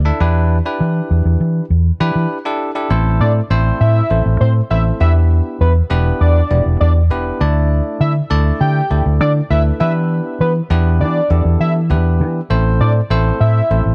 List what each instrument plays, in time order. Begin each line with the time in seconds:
Already playing: fingered electric bass D2
0.05 tine electric piano D4 E4 A4 E5
0.21 fingered electric bass E2, tine electric piano D4 E4 G4 B4
0.66 tine electric piano D4 E4 G4 B4
0.81 fingered electric bass E3
1.11 fingered electric bass E2
1.25 fingered electric bass E2
1.41 fingered electric bass E3
1.70 fingered electric bass E2
2.00 fingered electric bass E3, tine electric piano D4 E4 G4 B4
2.16 fingered electric bass E3
2.45 tine electric piano D4 E4 G4 A4
2.75 tine electric piano D4 E4 G4 A4
2.90 fingered electric bass A1, tine electric piano A3 C4 E4 A4 C5
3.20 fingered electric bass A2, analog synth lead D5
3.50 fingered electric bass A1, tine electric piano A3 C4 E4 A4 C5
3.81 fingered electric bass A2, analog synth lead E5
4.10 fingered electric bass A1, tine electric piano A3 C4 E4 A4 C5
4.26 fingered electric bass A1
4.41 fingered electric bass A2, analog synth lead C5
4.70 fingered electric bass A1, tine electric piano A3 C4 E4 A4 C5, analog synth lead E5
5.00 fingered electric bass E2, tine electric piano B3 D4 E4 G4 B4, analog synth lead E5
5.61 fingered electric bass E2, analog synth lead B4
5.90 fingered electric bass E1, tine electric piano B3 D4 E4 G4 B4
6.21 fingered electric bass E2, analog synth lead D5
6.50 fingered electric bass E1, tine electric piano B3 D4 E4 G4 D5
6.66 fingered electric bass E1
6.80 fingered electric bass E2, analog synth lead D5
7.10 fingered electric bass E1, tine electric piano B3 D4 E4 G4 B4
7.41 fingered electric bass D2, tine electric piano A3 D4 E4 A4 D5
8.01 fingered electric bass D3, analog synth lead E5
8.30 fingered electric bass D2, tine electric piano A3 D4 E4 A4 D5
8.61 fingered electric bass D3, analog synth lead G5
8.90 fingered electric bass D2, tine electric piano A3 D4 E4 A4 D5
9.06 fingered electric bass D2
9.20 fingered electric bass D3, analog synth lead D5
9.50 fingered electric bass D2, tine electric piano A3 D4 E4 A4 B4, analog synth lead E5
9.80 fingered electric bass E3, tine electric piano B3 D4 E4 G4 B4, analog synth lead E5
10.40 fingered electric bass E3, analog synth lead B4
10.70 fingered electric bass E2, tine electric piano B3 D4 E4 G4 B4
11.00 fingered electric bass E3, analog synth lead D5
11.30 fingered electric bass E2, tine electric piano B3 D4 E4 G4 A4
11.45 fingered electric bass E2
11.60 fingered electric bass E3, analog synth lead E5
11.90 fingered electric bass E2, tine electric piano B3 D4 E4 G4 B4
12.20 fingered electric bass E3
12.50 fingered electric bass A1, tine electric piano A3 C4 E4 A4 C5
12.81 fingered electric bass A2, analog synth lead D5
13.10 fingered electric bass A1, tine electric piano A3 C4 E4 A4 C5
13.40 fingered electric bass A2, analog synth lead E5
13.71 fingered electric bass A1, tine electric piano A3 C4 E4 A4 C5
13.86 fingered electric bass A1